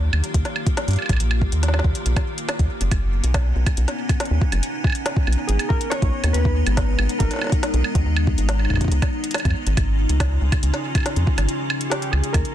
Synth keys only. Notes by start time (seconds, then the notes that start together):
5.47 G#4
5.69 A#4
5.90 C#5
6.33 B4
7.19 A#4
11.90 G4
12.11 G#4
12.33 A#4